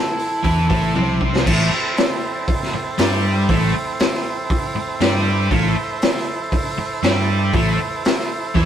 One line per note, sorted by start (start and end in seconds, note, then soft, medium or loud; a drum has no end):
0.00 1.43 C4 medium
0.00 0.44 E4 medium
0.00 1.43 E4 medium
0.00 0.43 A4 medium
0.00 1.44 A4 medium
0.00 1.43 C5 medium
0.19 open hi-hat soft
0.44 0.69 E2 medium
0.44 0.68 E3 medium
0.44 0.69 E4 medium
0.44 1.17 A4 medium
0.44 kick medium
0.44 open hi-hat medium
0.69 0.94 A1 medium
0.69 0.94 A2 medium
0.69 0.95 A3 medium
0.69 kick loud
0.69 open hi-hat medium
0.95 1.43 C2 medium
0.95 1.45 C3 medium
0.95 1.46 C4 medium
0.95 high tom medium
1.21 kick medium
1.36 snare medium
1.46 1.70 A1 medium
1.46 1.71 A2 medium
1.46 1.71 A3 medium
1.46 5.48 C4 medium
1.46 5.49 E4 medium
1.46 5.49 A4 medium
1.46 5.49 C5 medium
1.46 kick medium
1.46 crash loud
1.72 muted distorted electric guitar stroke medium
1.97 snare loud
1.97 open hi-hat soft
2.48 kick loud
2.48 open hi-hat soft
2.63 snare soft
2.74 muted distorted electric guitar stroke medium
2.74 muted picked electric bass stroke soft
2.98 3.46 G2 loud
2.98 3.48 G3 medium
2.98 3.49 G4 loud
2.98 snare loud
2.98 open hi-hat medium
3.49 3.73 A1 medium
3.49 3.73 A2 medium
3.49 3.74 A3 medium
3.49 kick loud
3.49 open hi-hat medium
3.75 muted distorted electric guitar stroke medium
3.75 muted picked electric bass stroke soft
3.99 snare loud
3.99 open hi-hat medium
4.14 snare soft
4.50 kick loud
4.50 open hi-hat medium
4.75 muted picked electric bass stroke soft
4.75 muted distorted electric guitar stroke medium
5.00 5.48 G2 loud
5.00 5.51 G3 medium
5.00 5.51 G4 medium
5.00 snare loud
5.00 open hi-hat medium
5.51 5.75 A1 medium
5.51 5.75 A2 medium
5.51 5.76 A3 loud
5.51 5.69 F4 medium
5.51 5.69 A#4 medium
5.51 5.69 C#5 medium
5.51 kick medium
5.51 open hi-hat soft
5.68 8.65 E4 medium
5.68 8.65 A4 medium
5.68 8.65 C5 medium
5.76 muted distorted electric guitar stroke medium
5.76 muted picked electric bass stroke soft
6.02 snare loud
6.02 open hi-hat medium
6.16 snare soft
6.52 kick medium
6.52 open hi-hat medium
6.78 muted distorted electric guitar stroke medium
6.78 muted picked electric bass stroke soft
7.03 7.50 G2 medium
7.03 7.53 G3 medium
7.03 7.53 G4 medium
7.03 snare loud
7.03 open hi-hat medium
7.54 7.77 A1 medium
7.54 7.78 A2 medium
7.54 7.79 A3 loud
7.54 kick loud
7.54 open hi-hat medium
7.81 muted distorted electric guitar stroke medium
8.05 snare loud
8.05 open hi-hat medium
8.19 snare soft
8.54 8.65 E2 medium
8.54 8.65 E3 medium
8.54 8.65 E4 loud
8.54 kick loud
8.54 open hi-hat medium